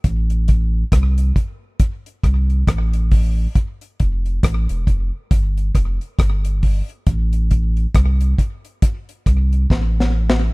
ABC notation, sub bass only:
X:1
M:4/4
L:1/16
Q:"Swing 16ths" 1/4=68
K:Aphr
V:1 name="Sub bass" clef=bass
A,,,4 C,,2 z4 C,,2 A,,,4 | z2 F,,,2 A,,, E,,, F,,, z G,,,2 F,,, z G,,,3 z | A,,,4 C,,2 z4 C,,2 A,,,4 |]